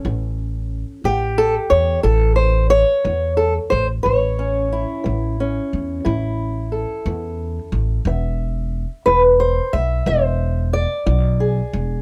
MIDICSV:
0, 0, Header, 1, 3, 480
1, 0, Start_track
1, 0, Tempo, 668151
1, 34, Time_signature, 12, 3, 24, 8
1, 8634, End_track
2, 0, Start_track
2, 0, Title_t, "Steel-string acoustic guitar"
2, 0, Program_c, 0, 25
2, 0, Note_on_c, 0, 61, 41
2, 0, Note_on_c, 0, 69, 42
2, 40, Note_on_c, 0, 45, 70
2, 468, Note_off_c, 0, 45, 0
2, 755, Note_on_c, 0, 67, 104
2, 756, Note_on_c, 0, 52, 61
2, 775, Note_off_c, 0, 61, 0
2, 775, Note_off_c, 0, 69, 0
2, 991, Note_on_c, 0, 69, 94
2, 1106, Note_off_c, 0, 69, 0
2, 1186, Note_off_c, 0, 52, 0
2, 1221, Note_on_c, 0, 73, 96
2, 1457, Note_off_c, 0, 73, 0
2, 1460, Note_on_c, 0, 69, 103
2, 1473, Note_off_c, 0, 67, 0
2, 1473, Note_on_c, 0, 45, 69
2, 1691, Note_off_c, 0, 69, 0
2, 1694, Note_on_c, 0, 72, 88
2, 1904, Note_off_c, 0, 45, 0
2, 1937, Note_off_c, 0, 72, 0
2, 1940, Note_on_c, 0, 73, 110
2, 2187, Note_on_c, 0, 52, 65
2, 2418, Note_off_c, 0, 73, 0
2, 2421, Note_on_c, 0, 69, 70
2, 2536, Note_off_c, 0, 69, 0
2, 2621, Note_off_c, 0, 52, 0
2, 2658, Note_on_c, 0, 72, 93
2, 2773, Note_off_c, 0, 72, 0
2, 2894, Note_on_c, 0, 73, 82
2, 2902, Note_on_c, 0, 45, 73
2, 3152, Note_on_c, 0, 61, 45
2, 3339, Note_off_c, 0, 45, 0
2, 3394, Note_on_c, 0, 64, 48
2, 3620, Note_on_c, 0, 52, 57
2, 3872, Note_off_c, 0, 61, 0
2, 3881, Note_on_c, 0, 61, 52
2, 4057, Note_off_c, 0, 52, 0
2, 4343, Note_off_c, 0, 64, 0
2, 4343, Note_on_c, 0, 45, 71
2, 4346, Note_on_c, 0, 64, 44
2, 4779, Note_off_c, 0, 45, 0
2, 4822, Note_off_c, 0, 73, 0
2, 4827, Note_on_c, 0, 69, 38
2, 5078, Note_on_c, 0, 52, 57
2, 5506, Note_off_c, 0, 52, 0
2, 5759, Note_off_c, 0, 64, 0
2, 5760, Note_off_c, 0, 69, 0
2, 5767, Note_off_c, 0, 61, 0
2, 5797, Note_on_c, 0, 52, 66
2, 5805, Note_on_c, 0, 76, 48
2, 6226, Note_off_c, 0, 52, 0
2, 6506, Note_on_c, 0, 71, 88
2, 6517, Note_on_c, 0, 64, 66
2, 6621, Note_off_c, 0, 71, 0
2, 6752, Note_on_c, 0, 72, 90
2, 6946, Note_off_c, 0, 64, 0
2, 6981, Note_off_c, 0, 76, 0
2, 6990, Note_on_c, 0, 76, 89
2, 6992, Note_off_c, 0, 72, 0
2, 7229, Note_on_c, 0, 52, 72
2, 7236, Note_on_c, 0, 72, 91
2, 7663, Note_off_c, 0, 52, 0
2, 7708, Note_off_c, 0, 76, 0
2, 7711, Note_on_c, 0, 74, 86
2, 7714, Note_off_c, 0, 72, 0
2, 7947, Note_on_c, 0, 64, 63
2, 8191, Note_on_c, 0, 68, 49
2, 8382, Note_off_c, 0, 64, 0
2, 8634, Note_off_c, 0, 68, 0
2, 8634, Note_off_c, 0, 74, 0
2, 8634, End_track
3, 0, Start_track
3, 0, Title_t, "Upright bass"
3, 0, Program_c, 1, 32
3, 34, Note_on_c, 1, 33, 86
3, 593, Note_off_c, 1, 33, 0
3, 749, Note_on_c, 1, 33, 77
3, 1123, Note_off_c, 1, 33, 0
3, 1230, Note_on_c, 1, 40, 77
3, 1418, Note_off_c, 1, 40, 0
3, 1467, Note_on_c, 1, 33, 97
3, 2028, Note_off_c, 1, 33, 0
3, 2191, Note_on_c, 1, 40, 93
3, 2564, Note_off_c, 1, 40, 0
3, 2673, Note_on_c, 1, 33, 86
3, 2859, Note_off_c, 1, 33, 0
3, 2914, Note_on_c, 1, 33, 81
3, 3473, Note_off_c, 1, 33, 0
3, 3633, Note_on_c, 1, 33, 85
3, 4005, Note_off_c, 1, 33, 0
3, 4118, Note_on_c, 1, 40, 82
3, 4302, Note_off_c, 1, 40, 0
3, 4354, Note_on_c, 1, 33, 93
3, 4912, Note_off_c, 1, 33, 0
3, 5070, Note_on_c, 1, 40, 90
3, 5443, Note_off_c, 1, 40, 0
3, 5547, Note_on_c, 1, 33, 88
3, 5735, Note_off_c, 1, 33, 0
3, 5784, Note_on_c, 1, 28, 94
3, 6347, Note_off_c, 1, 28, 0
3, 6512, Note_on_c, 1, 28, 77
3, 6885, Note_off_c, 1, 28, 0
3, 6994, Note_on_c, 1, 35, 83
3, 7180, Note_off_c, 1, 35, 0
3, 7229, Note_on_c, 1, 28, 94
3, 7790, Note_off_c, 1, 28, 0
3, 7950, Note_on_c, 1, 35, 98
3, 8324, Note_off_c, 1, 35, 0
3, 8430, Note_on_c, 1, 28, 91
3, 8618, Note_off_c, 1, 28, 0
3, 8634, End_track
0, 0, End_of_file